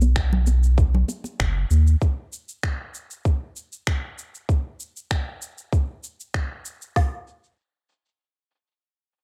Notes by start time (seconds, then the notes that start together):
Already playing: B1
0.01 high conga, shaker
0.16 finger snap, kick, shaker
0.33 low conga
0.47 muted conga, high conga, shaker
0.63 shaker
0.78 kick, shaker
0.95 low conga
1.08 muted conga, shaker
1.24 muted conga, shaker
1.40 F#1, finger snap, kick, shaker
1.71 D#2, shaker
1.87 shaker
2.02 kick, shaker
2.33 shaker
2.49 shaker
2.63 finger snap, kick, shaker
2.94 shaker
3.11 shaker
3.25 kick, shaker
3.56 shaker
3.73 shaker
3.87 finger snap, kick, shaker
4.18 shaker
4.35 shaker
4.49 kick, shaker
4.80 shaker
4.97 shaker
5.11 finger snap, kick, shaker
5.42 shaker
5.58 shaker
5.73 kick, shaker
6.04 shaker
6.20 shaker
6.34 finger snap, kick, shaker
6.65 shaker
6.82 shaker
6.96 kick, snare, open hi-hat